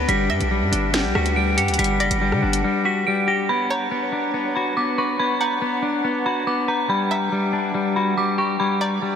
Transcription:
Already playing: flute section D4 B4
0.08 808-style bass G1, clean electric guitar G3, flute section F#5, synth bell B6, closed hi-hat
0.30 808-style bass G2, synth pluck E5, synth bell A#6
0.41 808-style bass B1, closed hi-hat
0.51 clean electric guitar G3
0.62 808-style bass G2
0.72 808-style bass G1, clean electric guitar D4, closed hi-hat
0.94 clean electric guitar G3, finger snap, snare, closed hi-hat
1.04 808-style bass B1
1.15 808-style bass D2, clean electric guitar F#4, synth bell B6, cross-stick
1.26 closed hi-hat
1.36 clean electric guitar G3, synth bell D7
1.57 808-style bass G2, clean electric guitar G4, synth bell C#7, closed hi-hat
1.68 808-style bass D2, closed hi-hat
1.74 closed hi-hat
1.79 808-style bass G1, clean electric guitar G3, synth bell B6, closed hi-hat
1.84 closed hi-hat
2.00 808-style bass F#1, synth pluck D5, synth bell A#6, closed hi-hat
2.11 808-style bass G1, closed hi-hat
2.21 clean electric guitar G3
2.32 808-style bass D3, cross-stick
2.42 808-style bass G1, clean electric guitar D4
2.53 closed hi-hat
2.64 clean electric guitar G3
2.85 clean electric guitar F#4, synth bell B6
3.07 clean electric guitar G3, synth bell D7
3.28 clean electric guitar G4, synth bell A#6
3.49 clean electric guitar B3, flute section D4 B4 C#5 F#5, synth bell B5
3.70 synth pluck C#5, synth bell A#5
3.91 clean electric guitar B3
4.12 clean electric guitar D4
4.34 clean electric guitar B3
4.56 clean electric guitar F#4, synth bell B5
4.77 clean electric guitar B3, synth bell D6
4.98 clean electric guitar B4, synth bell C#6
5.20 clean electric guitar B3, synth bell B5
5.41 synth pluck F#5, synth bell A#5
5.62 clean electric guitar B3
5.82 clean electric guitar D4
6.05 clean electric guitar B3
6.26 clean electric guitar F#4, synth bell B5
6.47 clean electric guitar B3, synth bell D6
6.68 clean electric guitar B4, synth bell A#5
6.89 clean electric guitar G3, synth bell B5
7.11 synth pluck E5, synth bell A#5
7.32 clean electric guitar G3
7.53 clean electric guitar D4
7.74 clean electric guitar G3
7.96 clean electric guitar F#4, synth bell B5
8.18 clean electric guitar G3, synth bell D6
8.38 clean electric guitar G4, synth bell C#6
8.60 clean electric guitar G3, synth bell B5
8.81 synth pluck D5, synth bell A#5
9.02 clean electric guitar G3

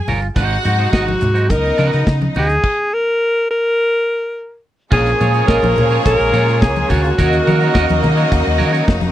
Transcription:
0.07 fingered electric bass G1, clean electric guitar F4 A#4 C#5, snare, open hi-hat, low conga
0.22 muted clean electric guitar stroke, closed hi-hat
0.36 fingered electric bass G#1, string section C3 F#3 G#3 D#4, clean electric guitar D#4 F#4 C5, violin section F#4 F#5, kick, closed hi-hat, low conga
0.65 fingered electric bass G#2, clean electric guitar D#4 F#4 C5, closed hi-hat, high conga
0.79 clean electric guitar D#4 F#4 C5, closed hi-hat
0.92 fingered electric bass G#1, clean electric guitar D#4 F#4 D#5, alto saxophone F#4, kick, snare, muted conga
1.07 muted clean electric guitar stroke, high conga
1.21 fingered electric bass G#2, muted clean electric guitar stroke, closed hi-hat, low conga
1.34 clean electric guitar D#4 F#4 C5, closed hi-hat
1.49 fingered electric bass C#2, string section C#3 B3 D#4, violin section D#4 D#5, alto saxophone A#4, muted clean electric guitar stroke, kick, closed hi-hat, muted conga
1.64 muted clean electric guitar stroke, closed hi-hat
1.78 fingered electric bass C#3, clean electric guitar D#4 F#4 B4, closed hi-hat, high conga
1.93 fingered electric bass C#3, clean electric guitar D#4 F#4 B4, closed hi-hat
2.07 fingered electric bass C#3, kick, snare, muted conga
2.21 muted clean electric guitar stroke, closed hi-hat, high conga
2.35 fingered electric bass D2, clean electric guitar D#4 F#4 B4, open hi-hat, low conga
2.39 alto saxophone G#4
2.49 muted clean electric guitar stroke, closed hi-hat
2.63 kick, crash
2.93 alto saxophone A#4
3.51 alto saxophone A#4
4.91 fingered electric bass A#1, string section C#3 G#3 A#3 F4, horn section F3 C#4 G#4, violin section A#3 G#4 C#5, clean electric guitar F4 G#4 C#5, alto saxophone G#4, kick, crash, low conga
5.06 closed hi-hat
5.20 fingered electric bass A#2, clean electric guitar F4 G#4 C#5, closed hi-hat, high conga
5.34 clean electric guitar F4 G#4 C#5, closed hi-hat
5.47 fingered electric bass A#1, clean electric guitar F4 G#4 D#5, alto saxophone A#4, kick, snare
5.63 fingered electric bass A#1, muted clean electric guitar stroke, closed hi-hat, muted conga, high conga
5.76 fingered electric bass A#2, muted clean electric guitar stroke, closed hi-hat, low conga
5.90 clean electric guitar F4 G#4 C#5, closed hi-hat
6.05 fingered electric bass A#1, alto saxophone A#4, muted clean electric guitar stroke, kick, closed hi-hat, muted conga
6.19 fingered electric bass A#1, muted clean electric guitar stroke, closed hi-hat
6.33 fingered electric bass A#2, clean electric guitar F4 G#4 C#5, closed hi-hat, high conga
6.47 clean electric guitar F4 G#4 C#5, closed hi-hat
6.61 fingered electric bass C#2, alto saxophone G#4, muted clean electric guitar stroke, kick, snare, muted conga
6.76 muted clean electric guitar stroke, closed hi-hat, high conga
6.89 fingered electric bass D2, clean electric guitar F4 G#4 C#5, alto saxophone F#4, kick, snare, open hi-hat, low conga
7.04 muted clean electric guitar stroke, closed hi-hat
7.18 fingered electric bass D#2, horn section F#3 D#4 A#4, string section F#3 D#4, violin section A#3 F#4 D#5, clean electric guitar F#4 A#4 C#5, kick, closed hi-hat, low conga
7.33 closed hi-hat, muted conga
7.46 fingered electric bass D#3, clean electric guitar F#4 A#4 C#5, closed hi-hat, high conga
7.61 clean electric guitar F#4 A#4 C#5, closed hi-hat
7.74 fingered electric bass D#2, clean electric guitar F#4 A#4 D#5, kick, snare, muted conga
7.88 fingered electric bass D#2, muted clean electric guitar stroke, closed hi-hat, muted conga, high conga
8.03 fingered electric bass D#3, muted clean electric guitar stroke, closed hi-hat, low conga
8.17 clean electric guitar F#4 A#4 C#5, closed hi-hat
8.31 fingered electric bass D#2, muted clean electric guitar stroke, kick, closed hi-hat
8.45 fingered electric bass D#2, muted clean electric guitar stroke, closed hi-hat
8.58 fingered electric bass D#3, clean electric guitar F#4 A#4 C#5, closed hi-hat, high conga
8.73 clean electric guitar F#4 A#4 C#5, closed hi-hat
8.87 fingered electric bass F1, muted clean electric guitar stroke, kick, snare, muted conga
9.01 muted clean electric guitar stroke, closed hi-hat, high conga

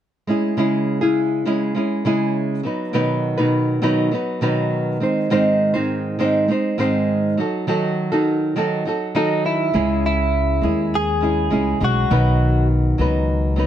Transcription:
0.27 nylon-string guitar G#3 C#4 E4 G#4
0.57 nylon-string guitar C#3 G#3 C#4 E4 G#4
1.01 nylon-string guitar C#3 G#3 C#4 E4 G#4
1.45 nylon-string guitar C#3 G#3 C#4 E4 G#4
1.75 nylon-string guitar G#3 C#4 E4 G#4
2.05 nylon-string guitar C#3 G#3 C#4 E4 G#4
2.63 nylon-string guitar F#3 B3 D#4 B4
2.93 nylon-string guitar B2 D#3 F#3 B3 D#4 B4
3.37 nylon-string guitar B2 D#3 F#3 B3 D#4 B4
3.82 nylon-string guitar B2 D#3 F#3 B3 D#4 B4
4.11 nylon-string guitar F#3 B3 D#4 B4
4.41 nylon-string guitar B2 D#3 F#3 B3 D#4 B4
5.00 nylon-string guitar G#3 C4 D#4 C5
5.30 nylon-string guitar G#2 D#3 G#3 C4 D#4 C5
5.74 nylon-string guitar G#2 D#3 G#3 C4 D#4 C5
6.19 nylon-string guitar G#2 D#3 G#3 C4 D#4 C5
6.48 nylon-string guitar G#3 C4 D#4 C5
6.78 nylon-string guitar G#2 D#3 G#3 C4 D#4 C5
7.37 nylon-string guitar F#3 D#4 F#4 A4
7.67 nylon-string guitar D#3 F#3 D#4 F#4 A4
8.12 nylon-string guitar D#3 F#3 D#4 F#4 A4
8.56 nylon-string guitar D#3 F#3 D#4 F#4 A4
8.85 nylon-string guitar F#3 D#4 F#4 A4
9.15 nylon-string guitar D#3 F#3 D#4 F#4 A4, clean electric guitar D#4
9.46 clean electric guitar E4
9.73 upright bass C#2, nylon-string guitar C#3 G#3 C#4 E4 G#4
10.06 clean electric guitar E4
10.61 upright bass D#2, nylon-string guitar G#3 C#4 E4 G#4
10.95 clean electric guitar G#4
11.21 nylon-string guitar G#3 C#4 E4 G#4
11.50 upright bass C#2, nylon-string guitar G#3 C#4 E4 G#4
11.80 upright bass B1, nylon-string guitar G#3 C#4 E4 G#4
11.84 clean electric guitar F#4
12.10 upright bass B1, nylon-string guitar B2 D#3 F#3 B3 D#4 B4
12.98 upright bass C#2, nylon-string guitar F#3 B3 D#4 B4
13.56 nylon-string guitar F#3 B3 D#4 B4

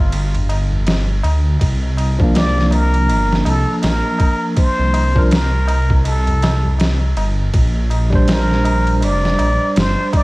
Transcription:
Already playing: muted trumpet F4
0.12 detuned saw bass G1, ride, tabla na
0.34 ride, tabla na, tabla ge
0.49 ride, tabla na
0.70 tabla na, tabla ge
0.87 snare, ride, tabla na
1.07 tabla na
1.23 detuned saw bass D2, ride, tabla na
1.45 tabla na
1.59 detuned saw bass C2, kick, ride, tabla na
1.82 tabla na
1.97 ride, tabla na
2.18 tine electric piano F3 D4, kick, tabla na
2.23 tine electric piano A#3
2.34 muted trumpet D5, snare, ride, tabla na
2.56 snare, tabla na
2.71 muted trumpet A#4, ride, tabla na
2.93 ride, tabla na
3.08 detuned saw bass G1, ride, tabla na
3.30 snare, tabla na
3.45 detuned saw bass C2, muted trumpet A4, ride, tabla na
3.67 tabla na
3.82 detuned saw bass A#1, muted trumpet A#4, snare, ride, tabla na
4.04 tabla na
4.18 kick, ride, tabla na
4.41 tabla na
4.56 muted trumpet C5, kick, ride, tabla na
4.78 detuned saw bass C2, tabla na
4.94 ride, tabla na
5.15 tine electric piano F3 D4 A#4, kick, tabla na, tabla ge
5.31 muted trumpet A#4, snare, ride, tabla na
5.53 tabla na
5.68 ride, tabla na
5.90 kick, tabla na
6.04 detuned saw bass C2, muted trumpet A4, ride, tabla na
6.27 ride, tabla na, tabla ge
6.42 snare, ride, tabla na
6.64 tabla na, tabla ge
6.79 snare, ride, tabla na
7.00 tabla na
7.16 detuned saw bass G1, ride, tabla na
7.39 tabla na
7.53 detuned saw bass A#1, kick, ride, tabla na
7.74 tabla na
7.90 ride, tabla na
8.10 tine electric piano G3 D4, kick, tabla na
8.15 tine electric piano C5
8.27 muted trumpet A#4, snare, ride, tabla na
8.50 snare, tabla na
8.65 ride, tabla na
8.86 ride, tabla na
9.01 detuned saw bass F1, muted trumpet D5, ride, tabla na
9.24 snare, tabla na
9.39 detuned saw bass A#1, ride, tabla na
9.61 tabla na
9.76 detuned saw bass G1, muted trumpet C5, snare, ride, tabla na
9.98 tabla na
10.13 muted trumpet D5, kick, ride, tabla na

